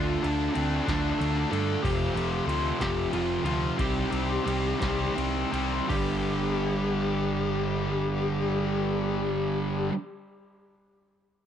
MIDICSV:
0, 0, Header, 1, 6, 480
1, 0, Start_track
1, 0, Tempo, 638298
1, 1373, Time_signature, 6, 3, 24, 8
1, 2340, Tempo, 668896
1, 3300, Tempo, 715990
1, 4260, Tempo, 745342
1, 7853, End_track
2, 0, Start_track
2, 0, Title_t, "Lead electric guitar"
2, 0, Program_c, 0, 29
2, 0, Note_on_c, 0, 65, 88
2, 173, Note_on_c, 0, 62, 89
2, 193, Note_off_c, 0, 65, 0
2, 398, Note_off_c, 0, 62, 0
2, 401, Note_on_c, 0, 60, 90
2, 631, Note_off_c, 0, 60, 0
2, 645, Note_on_c, 0, 62, 97
2, 1139, Note_on_c, 0, 69, 82
2, 1143, Note_off_c, 0, 62, 0
2, 1374, Note_on_c, 0, 67, 97
2, 1383, Note_off_c, 0, 69, 0
2, 1823, Note_off_c, 0, 67, 0
2, 2114, Note_on_c, 0, 67, 99
2, 2355, Note_off_c, 0, 67, 0
2, 2358, Note_on_c, 0, 65, 109
2, 2581, Note_off_c, 0, 65, 0
2, 2589, Note_on_c, 0, 65, 91
2, 2827, Note_off_c, 0, 65, 0
2, 2834, Note_on_c, 0, 67, 100
2, 3753, Note_off_c, 0, 67, 0
2, 4266, Note_on_c, 0, 67, 89
2, 6827, Note_off_c, 0, 67, 0
2, 7853, End_track
3, 0, Start_track
3, 0, Title_t, "Distorted electric guitar"
3, 0, Program_c, 1, 30
3, 0, Note_on_c, 1, 65, 93
3, 1119, Note_off_c, 1, 65, 0
3, 1128, Note_on_c, 1, 65, 94
3, 1356, Note_off_c, 1, 65, 0
3, 1384, Note_on_c, 1, 57, 101
3, 1390, Note_on_c, 1, 60, 89
3, 1396, Note_on_c, 1, 65, 108
3, 2565, Note_off_c, 1, 57, 0
3, 2568, Note_off_c, 1, 60, 0
3, 2571, Note_off_c, 1, 65, 0
3, 2584, Note_on_c, 1, 65, 93
3, 2595, Note_on_c, 1, 60, 82
3, 2597, Note_on_c, 1, 57, 72
3, 2803, Note_off_c, 1, 65, 0
3, 2808, Note_off_c, 1, 60, 0
3, 2809, Note_off_c, 1, 57, 0
3, 2830, Note_on_c, 1, 51, 100
3, 2845, Note_on_c, 1, 67, 104
3, 4005, Note_off_c, 1, 51, 0
3, 4012, Note_off_c, 1, 67, 0
3, 4021, Note_on_c, 1, 67, 85
3, 4038, Note_on_c, 1, 51, 77
3, 4040, Note_on_c, 1, 48, 67
3, 4248, Note_off_c, 1, 67, 0
3, 4257, Note_off_c, 1, 48, 0
3, 4257, Note_off_c, 1, 51, 0
3, 4284, Note_on_c, 1, 59, 103
3, 4286, Note_on_c, 1, 62, 108
3, 6870, Note_off_c, 1, 59, 0
3, 6872, Note_off_c, 1, 62, 0
3, 7853, End_track
4, 0, Start_track
4, 0, Title_t, "Distorted electric guitar"
4, 0, Program_c, 2, 30
4, 0, Note_on_c, 2, 50, 99
4, 0, Note_on_c, 2, 57, 96
4, 0, Note_on_c, 2, 62, 118
4, 165, Note_off_c, 2, 50, 0
4, 173, Note_off_c, 2, 57, 0
4, 173, Note_off_c, 2, 62, 0
4, 174, Note_on_c, 2, 50, 85
4, 176, Note_on_c, 2, 57, 91
4, 182, Note_on_c, 2, 62, 93
4, 393, Note_off_c, 2, 50, 0
4, 400, Note_off_c, 2, 62, 0
4, 402, Note_on_c, 2, 50, 92
4, 405, Note_off_c, 2, 57, 0
4, 408, Note_on_c, 2, 57, 91
4, 409, Note_on_c, 2, 62, 97
4, 640, Note_off_c, 2, 50, 0
4, 641, Note_off_c, 2, 57, 0
4, 644, Note_off_c, 2, 62, 0
4, 649, Note_on_c, 2, 50, 102
4, 650, Note_on_c, 2, 57, 95
4, 653, Note_on_c, 2, 62, 98
4, 884, Note_off_c, 2, 50, 0
4, 884, Note_off_c, 2, 57, 0
4, 892, Note_off_c, 2, 62, 0
4, 893, Note_on_c, 2, 50, 98
4, 893, Note_on_c, 2, 57, 94
4, 901, Note_on_c, 2, 62, 107
4, 1119, Note_off_c, 2, 50, 0
4, 1125, Note_off_c, 2, 57, 0
4, 1128, Note_off_c, 2, 62, 0
4, 1128, Note_on_c, 2, 50, 86
4, 1134, Note_on_c, 2, 57, 93
4, 1137, Note_on_c, 2, 62, 107
4, 1356, Note_off_c, 2, 50, 0
4, 1358, Note_off_c, 2, 57, 0
4, 1360, Note_off_c, 2, 62, 0
4, 1378, Note_on_c, 2, 41, 94
4, 1379, Note_on_c, 2, 48, 102
4, 1387, Note_on_c, 2, 53, 100
4, 1604, Note_off_c, 2, 41, 0
4, 1610, Note_off_c, 2, 53, 0
4, 1612, Note_off_c, 2, 48, 0
4, 1613, Note_on_c, 2, 41, 87
4, 1619, Note_on_c, 2, 53, 104
4, 1621, Note_on_c, 2, 48, 98
4, 1843, Note_off_c, 2, 48, 0
4, 1844, Note_off_c, 2, 41, 0
4, 1852, Note_on_c, 2, 48, 90
4, 1853, Note_on_c, 2, 41, 83
4, 1854, Note_off_c, 2, 53, 0
4, 1863, Note_on_c, 2, 53, 88
4, 2095, Note_off_c, 2, 41, 0
4, 2098, Note_off_c, 2, 48, 0
4, 2098, Note_off_c, 2, 53, 0
4, 2104, Note_on_c, 2, 41, 87
4, 2107, Note_on_c, 2, 48, 99
4, 2107, Note_on_c, 2, 53, 95
4, 2334, Note_off_c, 2, 48, 0
4, 2335, Note_off_c, 2, 41, 0
4, 2340, Note_off_c, 2, 53, 0
4, 2343, Note_on_c, 2, 41, 87
4, 2343, Note_on_c, 2, 48, 92
4, 2348, Note_on_c, 2, 53, 103
4, 2564, Note_off_c, 2, 41, 0
4, 2567, Note_off_c, 2, 48, 0
4, 2571, Note_off_c, 2, 53, 0
4, 2572, Note_on_c, 2, 41, 83
4, 2576, Note_on_c, 2, 48, 100
4, 2580, Note_on_c, 2, 53, 102
4, 2797, Note_off_c, 2, 41, 0
4, 2799, Note_off_c, 2, 48, 0
4, 2801, Note_off_c, 2, 53, 0
4, 2806, Note_on_c, 2, 48, 98
4, 2815, Note_on_c, 2, 55, 108
4, 2819, Note_on_c, 2, 60, 104
4, 3043, Note_off_c, 2, 48, 0
4, 3046, Note_off_c, 2, 55, 0
4, 3050, Note_off_c, 2, 60, 0
4, 3052, Note_on_c, 2, 48, 83
4, 3055, Note_on_c, 2, 55, 90
4, 3059, Note_on_c, 2, 60, 100
4, 3283, Note_off_c, 2, 48, 0
4, 3290, Note_off_c, 2, 55, 0
4, 3292, Note_on_c, 2, 48, 78
4, 3297, Note_off_c, 2, 60, 0
4, 3298, Note_on_c, 2, 55, 94
4, 3306, Note_on_c, 2, 60, 94
4, 3518, Note_off_c, 2, 48, 0
4, 3524, Note_off_c, 2, 55, 0
4, 3526, Note_on_c, 2, 48, 88
4, 3529, Note_off_c, 2, 60, 0
4, 3532, Note_on_c, 2, 55, 94
4, 3537, Note_on_c, 2, 60, 109
4, 3761, Note_off_c, 2, 48, 0
4, 3762, Note_off_c, 2, 60, 0
4, 3765, Note_off_c, 2, 55, 0
4, 3769, Note_on_c, 2, 48, 92
4, 3770, Note_on_c, 2, 60, 103
4, 3773, Note_on_c, 2, 55, 99
4, 4004, Note_off_c, 2, 48, 0
4, 4012, Note_off_c, 2, 55, 0
4, 4012, Note_on_c, 2, 48, 85
4, 4014, Note_off_c, 2, 60, 0
4, 4020, Note_on_c, 2, 55, 106
4, 4022, Note_on_c, 2, 60, 97
4, 4244, Note_off_c, 2, 48, 0
4, 4248, Note_off_c, 2, 55, 0
4, 4249, Note_off_c, 2, 60, 0
4, 4258, Note_on_c, 2, 43, 100
4, 4270, Note_on_c, 2, 50, 107
4, 4282, Note_on_c, 2, 55, 106
4, 6844, Note_off_c, 2, 43, 0
4, 6857, Note_off_c, 2, 50, 0
4, 6869, Note_off_c, 2, 55, 0
4, 7853, End_track
5, 0, Start_track
5, 0, Title_t, "Fingered electric bass"
5, 0, Program_c, 3, 33
5, 0, Note_on_c, 3, 38, 99
5, 119, Note_off_c, 3, 38, 0
5, 178, Note_on_c, 3, 38, 89
5, 356, Note_off_c, 3, 38, 0
5, 419, Note_on_c, 3, 38, 92
5, 596, Note_off_c, 3, 38, 0
5, 660, Note_on_c, 3, 38, 85
5, 837, Note_off_c, 3, 38, 0
5, 907, Note_on_c, 3, 38, 96
5, 1081, Note_off_c, 3, 38, 0
5, 1141, Note_on_c, 3, 43, 86
5, 1316, Note_off_c, 3, 43, 0
5, 1384, Note_on_c, 3, 29, 91
5, 1558, Note_off_c, 3, 29, 0
5, 1614, Note_on_c, 3, 29, 91
5, 1792, Note_off_c, 3, 29, 0
5, 1851, Note_on_c, 3, 38, 89
5, 2032, Note_off_c, 3, 38, 0
5, 2113, Note_on_c, 3, 29, 80
5, 2288, Note_off_c, 3, 29, 0
5, 2348, Note_on_c, 3, 29, 92
5, 2520, Note_off_c, 3, 29, 0
5, 2570, Note_on_c, 3, 38, 89
5, 2749, Note_off_c, 3, 38, 0
5, 2826, Note_on_c, 3, 36, 96
5, 3000, Note_off_c, 3, 36, 0
5, 3063, Note_on_c, 3, 36, 85
5, 3242, Note_off_c, 3, 36, 0
5, 3305, Note_on_c, 3, 36, 87
5, 3476, Note_off_c, 3, 36, 0
5, 3546, Note_on_c, 3, 36, 93
5, 3718, Note_off_c, 3, 36, 0
5, 3782, Note_on_c, 3, 36, 83
5, 3957, Note_off_c, 3, 36, 0
5, 4021, Note_on_c, 3, 36, 80
5, 4201, Note_off_c, 3, 36, 0
5, 4272, Note_on_c, 3, 31, 93
5, 6833, Note_off_c, 3, 31, 0
5, 7853, End_track
6, 0, Start_track
6, 0, Title_t, "Drums"
6, 184, Note_on_c, 9, 51, 83
6, 259, Note_off_c, 9, 51, 0
6, 417, Note_on_c, 9, 51, 88
6, 492, Note_off_c, 9, 51, 0
6, 661, Note_on_c, 9, 36, 93
6, 666, Note_on_c, 9, 51, 96
6, 672, Note_on_c, 9, 38, 120
6, 736, Note_off_c, 9, 36, 0
6, 741, Note_off_c, 9, 51, 0
6, 747, Note_off_c, 9, 38, 0
6, 913, Note_on_c, 9, 51, 86
6, 988, Note_off_c, 9, 51, 0
6, 1152, Note_on_c, 9, 51, 78
6, 1227, Note_off_c, 9, 51, 0
6, 1385, Note_on_c, 9, 36, 113
6, 1392, Note_on_c, 9, 49, 107
6, 1460, Note_off_c, 9, 36, 0
6, 1467, Note_off_c, 9, 49, 0
6, 1633, Note_on_c, 9, 51, 75
6, 1708, Note_off_c, 9, 51, 0
6, 1873, Note_on_c, 9, 51, 82
6, 1949, Note_off_c, 9, 51, 0
6, 2110, Note_on_c, 9, 36, 83
6, 2113, Note_on_c, 9, 51, 108
6, 2119, Note_on_c, 9, 38, 121
6, 2185, Note_off_c, 9, 36, 0
6, 2188, Note_off_c, 9, 51, 0
6, 2194, Note_off_c, 9, 38, 0
6, 2353, Note_on_c, 9, 51, 88
6, 2425, Note_off_c, 9, 51, 0
6, 2587, Note_on_c, 9, 51, 83
6, 2659, Note_off_c, 9, 51, 0
6, 2827, Note_on_c, 9, 36, 110
6, 2828, Note_on_c, 9, 51, 122
6, 2898, Note_off_c, 9, 36, 0
6, 2899, Note_off_c, 9, 51, 0
6, 3066, Note_on_c, 9, 51, 86
6, 3138, Note_off_c, 9, 51, 0
6, 3317, Note_on_c, 9, 51, 97
6, 3384, Note_off_c, 9, 51, 0
6, 3546, Note_on_c, 9, 51, 110
6, 3547, Note_on_c, 9, 36, 80
6, 3551, Note_on_c, 9, 38, 107
6, 3613, Note_off_c, 9, 51, 0
6, 3614, Note_off_c, 9, 36, 0
6, 3618, Note_off_c, 9, 38, 0
6, 3790, Note_on_c, 9, 51, 89
6, 3857, Note_off_c, 9, 51, 0
6, 4029, Note_on_c, 9, 51, 85
6, 4097, Note_off_c, 9, 51, 0
6, 4272, Note_on_c, 9, 36, 113
6, 4274, Note_on_c, 9, 57, 89
6, 4336, Note_off_c, 9, 36, 0
6, 4338, Note_off_c, 9, 57, 0
6, 7853, End_track
0, 0, End_of_file